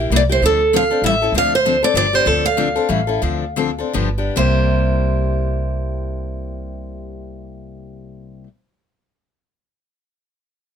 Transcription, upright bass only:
0.10 0.36 C2 medium
0.41 0.90 D2 medium
1.02 1.27 A1 medium
1.32 1.82 D2 medium
1.94 2.19 G1 medium
2.26 2.76 D2 medium
2.89 3.15 A1 medium
3.22 3.81 D2 medium
3.95 4.28 G1 medium
4.37 8.43 C2 medium

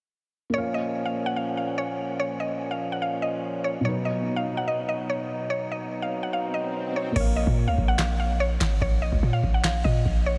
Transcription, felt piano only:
0.50 3.79 A#3 medium
0.50 3.80 A#4 medium
0.55 3.81 C#5 medium
0.55 3.83 F5 medium
3.81 7.10 B2 medium
3.81 7.11 F#3 medium
3.86 7.12 D#4 medium
3.86 7.14 B4 medium
7.12 10.38 A#3 medium
7.12 10.38 A#4 medium
7.17 10.38 C#5 medium
7.17 10.38 F5 medium

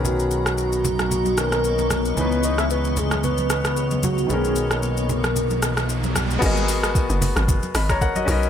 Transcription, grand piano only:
0.00 1.33 D#3 medium
0.00 1.34 B3 medium
0.00 1.35 C#4 medium
0.00 1.36 A#4 medium
1.36 2.16 D#3 soft
1.36 2.17 B3 soft
1.36 2.15 C#4 soft
1.36 2.18 A#4 medium
2.14 4.24 E3 medium
2.14 4.25 C#4 medium
2.19 4.26 D#4 medium
2.19 4.27 B4 medium
4.27 6.37 D#3 medium
4.27 6.37 B3 medium
4.31 6.39 C#4 medium
4.31 6.40 A#4 medium
6.39 8.23 B3 medium
6.39 7.71 F#4 medium
6.39 7.72 G#4 medium
6.44 7.73 A#4 medium
6.44 7.74 D#5 medium
7.75 7.89 D#5 medium
7.75 7.89 B5 medium
7.90 8.01 C#5 medium
7.90 8.01 A#5 medium
8.02 8.16 A#4 medium
8.02 8.15 F#5 medium
8.16 8.25 F#4 medium
8.16 8.30 D#5 medium
8.25 8.50 C#4 medium
8.25 8.50 F#4 medium
8.25 8.50 A#4 medium
8.30 8.50 B4 medium
8.30 8.50 D#5 loud

